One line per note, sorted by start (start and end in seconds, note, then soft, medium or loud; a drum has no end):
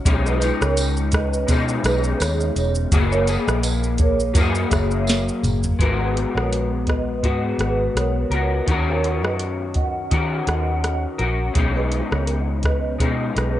0.05 0.50 B1 loud
0.05 0.41 B2 medium
0.05 0.41 G#3 medium
0.05 0.40 C#4 loud
0.05 0.39 D#4 loud
0.05 kick loud
0.05 closed hi-hat medium
0.05 shaker medium
0.26 0.41 G#4 medium
0.26 0.41 B4 medium
0.26 shaker medium
0.40 1.49 G#3 soft
0.40 1.50 C#4 medium
0.40 1.48 D#4 medium
0.40 closed hi-hat medium
0.40 tambourine soft
0.40 shaker medium
0.61 1.45 C#2 medium
0.61 0.77 A#4 medium
0.61 0.76 C#5 medium
0.61 cross-stick medium
0.61 shaker soft
0.77 closed hi-hat medium
0.77 tambourine medium
0.77 shaker medium
0.97 shaker soft
1.12 1.47 B4 medium
1.12 1.47 D#5 medium
1.12 kick medium
1.12 cross-stick medium
1.12 closed hi-hat medium
1.12 shaker medium
1.34 shaker medium
1.47 2.91 B2 medium
1.47 1.77 B2 medium
1.47 2.91 G#3 medium
1.47 kick medium
1.47 closed hi-hat medium
1.47 tambourine soft
1.47 shaker medium
1.51 2.92 C#4 medium
1.51 2.93 D#4 medium
1.68 shaker medium
1.84 2.12 B1 medium
1.84 2.19 G#4 medium
1.84 2.19 B4 medium
1.84 cross-stick medium
1.84 closed hi-hat medium
1.84 tambourine soft
1.84 shaker medium
2.04 shaker medium
2.20 2.49 D#2 medium
2.20 2.73 G#4 medium
2.20 2.73 C#5 medium
2.20 cross-stick medium
2.20 closed hi-hat medium
2.20 tambourine medium
2.20 shaker medium
2.40 shaker soft
2.56 2.84 E1 medium
2.56 closed hi-hat soft
2.56 tambourine soft
2.56 shaker soft
2.75 shaker medium
2.92 3.36 F#1 loud
2.92 3.28 F#3 medium
2.92 3.28 A#3 medium
2.92 3.28 E4 medium
2.92 3.27 G#4 medium
2.92 kick loud
2.92 closed hi-hat medium
2.92 shaker medium
3.11 3.27 A#4 medium
3.11 3.26 C#5 medium
3.11 shaker medium
3.27 4.35 A#3 soft
3.27 4.36 E4 medium
3.27 4.37 G#4 medium
3.27 closed hi-hat medium
3.27 tambourine soft
3.27 shaker medium
3.46 4.31 A#1 medium
3.46 3.62 B4 medium
3.46 3.62 D#5 medium
3.46 cross-stick medium
3.46 shaker soft
3.63 closed hi-hat medium
3.63 tambourine medium
3.63 shaker medium
3.83 shaker soft
3.98 4.34 A#4 medium
3.98 4.33 C#5 medium
3.98 kick medium
3.98 closed hi-hat medium
3.98 shaker soft
4.20 shaker medium
4.34 4.64 F#2 loud
4.34 5.78 F#3 medium
4.34 5.80 A#3 medium
4.34 5.80 E4 medium
4.34 kick medium
4.34 closed hi-hat medium
4.34 tambourine soft
4.34 shaker medium
4.40 5.82 G#4 medium
4.55 shaker medium
4.70 5.29 F#1 medium
4.70 5.23 C#5 medium
4.70 5.23 E5 medium
4.70 kick medium
4.70 cross-stick medium
4.70 closed hi-hat medium
4.70 tambourine soft
4.70 shaker medium
4.91 shaker soft
5.07 snare medium
5.07 closed hi-hat medium
5.07 tambourine medium
5.07 shaker medium
5.29 shaker soft
5.43 5.72 F#1 medium
5.43 closed hi-hat soft
5.43 mid tom medium
5.43 tambourine soft
5.43 shaker soft
5.63 floor tom loud
5.63 shaker medium
5.79 6.24 G#1 loud
5.79 7.22 G#3 medium
5.79 7.23 B3 medium
5.79 7.24 F#4 medium
5.79 7.26 A#4 medium
5.79 kick medium
5.79 closed hi-hat medium
6.00 6.15 G#4 soft
6.00 6.14 B4 medium
6.17 closed hi-hat medium
6.34 7.25 A#1 medium
6.34 6.51 A#4 medium
6.34 6.50 C#5 medium
6.34 cross-stick medium
6.53 closed hi-hat medium
6.87 7.22 B4 medium
6.87 7.22 D#5 medium
6.87 kick medium
6.87 cross-stick medium
6.87 closed hi-hat soft
7.23 7.52 G#2 medium
7.23 8.31 G#3 medium
7.23 8.31 B3 medium
7.23 8.33 F#4 medium
7.23 kick medium
7.23 closed hi-hat medium
7.58 7.87 G#1 medium
7.58 7.93 G#4 soft
7.58 7.93 B4 medium
7.58 cross-stick medium
7.58 closed hi-hat soft
7.95 8.24 B1 medium
7.95 8.48 A#4 medium
7.95 8.48 C#5 medium
7.95 cross-stick medium
7.95 closed hi-hat medium
8.30 8.59 C#2 medium
8.30 8.68 B3 soft
8.30 8.68 F#4 medium
8.30 8.67 A#4 medium
8.30 closed hi-hat soft
8.66 9.23 D#2 loud
8.66 10.10 D#3 medium
8.66 10.11 C#4 medium
8.66 10.12 F#4 medium
8.66 kick medium
8.66 closed hi-hat medium
8.71 10.12 A#4 medium
8.88 9.04 A#4 medium
8.88 9.03 C#5 medium
9.04 closed hi-hat soft
9.23 10.07 F#2 medium
9.23 9.39 B4 soft
9.23 9.38 D#5 medium
9.23 cross-stick medium
9.39 closed hi-hat medium
9.74 10.10 D#5 medium
9.74 10.10 F#5 medium
9.74 kick medium
9.74 closed hi-hat soft
10.11 11.24 D#3 medium
10.11 10.40 D#3 medium
10.11 11.21 C#4 medium
10.11 11.20 F#4 medium
10.11 11.17 A#4 medium
10.11 kick medium
10.11 closed hi-hat medium
10.47 11.05 D#2 medium
10.47 11.00 D#5 medium
10.47 11.00 F#5 medium
10.47 cross-stick medium
10.47 closed hi-hat soft
10.84 cross-stick medium
10.84 closed hi-hat medium
11.18 11.48 A#1 medium
11.18 11.56 C#4 soft
11.18 11.56 F#4 medium
11.18 11.55 A#4 medium
11.18 closed hi-hat soft
11.54 12.00 B1 medium
11.54 12.97 B2 medium
11.54 12.99 G#3 medium
11.54 13.00 C#4 medium
11.54 kick loud
11.54 closed hi-hat medium
11.58 13.00 D#4 medium
11.75 11.91 G#4 medium
11.75 11.91 B4 medium
11.92 closed hi-hat medium
12.11 12.96 C#2 medium
12.11 12.27 A#4 medium
12.11 12.27 C#5 medium
12.11 cross-stick medium
12.27 closed hi-hat medium
12.63 12.99 B4 medium
12.63 12.98 D#5 medium
12.63 kick medium
12.63 cross-stick medium
12.63 closed hi-hat soft
12.99 13.60 B2 medium
12.99 13.29 B2 medium
12.99 13.60 G#3 medium
12.99 13.60 C#4 medium
12.99 13.60 D#4 medium
12.99 kick medium
12.99 closed hi-hat medium
13.35 13.60 B1 medium
13.35 13.60 G#4 medium
13.35 13.60 B4 medium
13.35 cross-stick medium
13.35 closed hi-hat soft